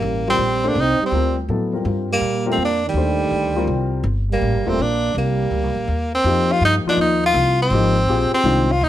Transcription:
Already playing: trombone G3, tenor saxophone A#3
0.02 upright bass A1
0.28 trombone G3, grand piano G3 C4 F4 A#4, tenor saxophone C4
0.39 upright bass A#1
0.64 grand piano A3 D4 G4 C5, trombone A#3
0.68 tenor saxophone D4
0.75 upright bass C2, trombone C4
0.81 tenor saxophone D#4
1.02 trombone G3, tenor saxophone C4
1.11 upright bass D2, grand piano G3 C4 F4 A#4
1.49 upright bass A2, grand piano F#3 B3 E4 A4
1.73 grand piano G3 C4 F4 A#4
1.85 upright bass G2, grand piano G3 C4 F4 A#4
2.12 trombone G3, tenor saxophone A#3
2.21 upright bass A#2
2.46 grand piano G3 C4 F4 A#4, trombone A3
2.52 tenor saxophone C4
2.57 upright bass F2, trombone A#3
2.65 tenor saxophone D4
2.86 trombone D#3, tenor saxophone G3
2.94 upright bass D#2, grand piano A3 D4 G4 C5
3.31 upright bass D2
3.56 grand piano G3 C4 F4 A#4
3.67 upright bass C2
4.04 upright bass G1
4.31 trombone G3, tenor saxophone A#3
4.41 upright bass A1
4.54 upright bass G1
4.66 upright bass D#1, grand piano G3 C4 F4 A#4, trombone A3, tenor saxophone C4
4.79 upright bass A#1, trombone A#3, tenor saxophone D4
5.15 upright bass C2, trombone G3, tenor saxophone A#3
5.51 upright bass D2
5.63 upright bass C2
5.76 upright bass A#1
5.88 upright bass D#2
6.15 tenor saxophone C4
6.24 upright bass F2, grand piano F3 A#3 D#4 G4
6.52 tenor saxophone F4
6.61 upright bass G2, tenor saxophone D#4
6.85 grand piano F3 A#3 D#4 F4, tenor saxophone D4, muted upright bass stroke
6.97 upright bass D#2, tenor saxophone D#4
7.26 tenor saxophone F4
7.34 upright bass C2
7.62 tenor saxophone C4
7.70 upright bass G#1, grand piano F3 A#3 D#4 G4
8.08 upright bass A#1, grand piano C4 F4 G4 G#4
8.31 tenor saxophone C4, muted upright bass stroke
8.44 upright bass C2, grand piano D#3 G#3 D4 F4
8.72 tenor saxophone F4
8.81 upright bass D#2, tenor saxophone D#4

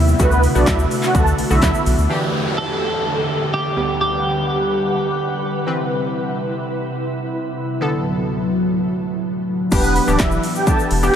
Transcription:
Already playing: sub bass D#2, synth pluck C3 G3 B3 E4, ambient pad C3 B3 E4
0.08 shaker
0.19 sub bass D2, synth pluck D3 A3 B3 F#4, ambient pad D3 A3 F#4, supersaw synth B3 B4, kick, closed hi-hat, shaker
0.32 shaker
0.43 open hi-hat, shaker
0.55 sub bass B1, synth pluck D3 A3 B3 F#4, supersaw synth D4 D5, shaker
0.67 sub bass D2, supersaw synth E4 E5, kick, snare, clap, closed hi-hat, shaker
0.79 shaker
0.91 open hi-hat, shaker
1.03 supersaw synth F#4 F#5, clap, shaker
1.15 sub bass D2, synth pluck D3 A3 B3 F#4, supersaw synth A4 A5, kick, closed hi-hat, shaker
1.27 shaker
1.38 sub bass B1, open hi-hat, shaker
1.50 sub bass B1, synth pluck D3 A3 B3 F#4, supersaw synth E4 E5, shaker
1.62 sub bass D2, kick, snare, clap, closed hi-hat, shaker
1.74 shaker
1.86 sub bass B1, open hi-hat, shaker
1.98 sub bass D2, shaker
2.10 ambient pad E2 D3 G4, synth pluck E3 D4 G4, downlifter
2.58 clean electric guitar A4
3.54 clean electric guitar G4
3.76 synth pluck D2 G3 B3 G4, ambient pad D3 G3 B4 F#5
4.01 clean electric guitar G4
5.67 ambient pad C3 E4, synth pluck E3 C4 B4
7.81 ambient pad D2 A2 F#3, synth pluck D3 B3 A4
9.72 sub bass E1, synth pluck E3 B3 D4 G4, supersaw synth B3 B4, kick, closed hi-hat, crash, shaker
9.84 shaker
9.96 open hi-hat, shaker
10.07 sub bass D1, synth pluck E3 B3 D4 G4, supersaw synth D4 D5, shaker
10.19 sub bass E1, supersaw synth E4 E5, kick, snare, clap, closed hi-hat, shaker
10.31 shaker
10.43 open hi-hat, shaker
10.55 supersaw synth G4 G5, shaker
10.67 synth pluck E3 B3 D4 G4, supersaw synth A4 A5, kick, closed hi-hat, shaker
10.79 shaker
10.91 sub bass E1, open hi-hat, shaker
11.03 synth pluck E3 B3 D4 G4, supersaw synth G4 G5, shaker

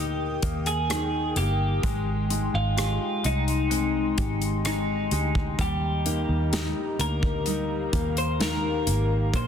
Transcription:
Already playing: fingered electric bass D2, grand piano A#2 A#3 D#4, nylon-string guitar D#4 G4, clean electric guitar G4, analog synth pad A#4 G5 D#6
0.42 fingered electric bass D#2, grand piano A#3, kick, closed hi-hat
0.66 clean electric guitar G#4, closed hi-hat
0.90 grand piano D#3, nylon-string guitar D#4, cross-stick, closed hi-hat
1.36 fingered electric bass G1, grand piano A#3, nylon-string guitar G4, clean electric guitar G4, closed hi-hat
1.83 fingered electric bass G#1, analog synth pad G#3 C6, nylon-string guitar G#3, grand piano G#3, kick, closed hi-hat
2.30 grand piano G#3, nylon-string guitar D#4, closed hi-hat
2.54 fingered electric bass G#1, clean electric guitar F4
2.77 grand piano G#3, nylon-string guitar G4, cross-stick, closed hi-hat
3.24 fingered electric bass C2, grand piano G#3, nylon-string guitar D#4, clean electric guitar D#4, closed hi-hat
3.48 closed hi-hat
3.70 grand piano G#3, nylon-string guitar C4, closed hi-hat
4.18 fingered electric bass G#1, grand piano G#3, nylon-string guitar G4, kick, closed hi-hat
4.42 closed hi-hat
4.65 grand piano G#3, nylon-string guitar D#4, clean electric guitar D#4, cross-stick, closed hi-hat
5.11 fingered electric bass D2, grand piano G#3, nylon-string guitar G4, closed hi-hat
5.35 kick
5.59 fingered electric bass D#2, grand piano G3, analog synth pad G4 D#5 A#5, clean electric guitar G4, kick, closed hi-hat
6.06 grand piano A#3, nylon-string guitar D#4, closed hi-hat
6.29 fingered electric bass D#2
6.53 grand piano D#4, nylon-string guitar G4, snare, closed hi-hat
6.99 fingered electric bass D2, grand piano A#3, nylon-string guitar D#4, clean electric guitar A#4, closed hi-hat
7.23 kick
7.46 nylon-string guitar G3, grand piano D#4, analog synth pad F5, closed hi-hat
7.92 fingered electric bass D#2, grand piano A#3, nylon-string guitar G4, kick, closed hi-hat
8.17 clean electric guitar C5, closed hi-hat
8.40 grand piano D#3, nylon-string guitar D#4, clean electric guitar A#4, snare, closed hi-hat
8.87 fingered electric bass G#1, grand piano A#3, nylon-string guitar G4, closed hi-hat
9.33 fingered electric bass A#1, nylon-string guitar A#2, grand piano A#3, analog synth pad A#4 D5 C6, clean electric guitar C5, kick, closed hi-hat

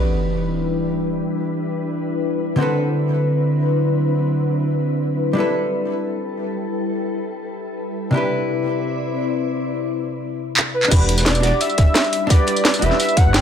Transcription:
Already playing: hollow-body jazz guitar E3 D4 F#4 G4 B4, ambient pad G3 D4 E4 B4, sub drop
2.56 hollow-body jazz guitar D3 C4 F#4, ambient pad F#3 C4
2.61 hollow-body jazz guitar A4 B4
5.33 hollow-body jazz guitar G3 D4 E4, ambient pad G3 A4
5.38 hollow-body jazz guitar A4 B4
8.11 hollow-body jazz guitar C3 D4 E4, ambient pad C4 E4 B4 D5
8.16 hollow-body jazz guitar G4 B4
10.57 clap
10.74 soft synth lead B4
10.83 clap
10.88 detuned saw bass E1, ambient pad G3 D4 E4 B5, hollow-body jazz guitar D4 F#4, kick, closed hi-hat, crash, tambourine
10.93 hollow-body jazz guitar G4 B4
11.09 closed hi-hat
11.18 snare, tambourine
11.25 soft synth lead D5, snare, closed hi-hat, tambourine
11.35 tambourine
11.40 detuned saw bass E1, hollow-body jazz guitar D4 F#4, snare, closed hi-hat
11.45 hollow-body jazz guitar G4 D5
11.60 soft synth lead E5, closed hi-hat, tambourine
11.69 tambourine
11.78 detuned saw bass D1, kick, closed hi-hat
11.94 snare, closed hi-hat, tambourine
12.04 tambourine
12.13 closed hi-hat
12.27 hollow-body jazz guitar D4 F#4, soft synth lead D5, kick, closed hi-hat, tambourine
12.31 hollow-body jazz guitar G4 B4
12.47 closed hi-hat
12.56 tambourine
12.65 snare, closed hi-hat, tambourine
12.74 tambourine
12.79 detuned saw bass E1, hollow-body jazz guitar D4 F#4, soft synth lead E5, closed hi-hat
12.83 hollow-body jazz guitar G4 B4
12.91 snare
13.00 soft synth lead E5, closed hi-hat, tambourine
13.08 tambourine
13.17 soft synth lead F#5, kick, closed hi-hat
13.26 detuned saw bass G1
13.34 soft synth lead G5, snare, closed hi-hat, open hi-hat, tambourine

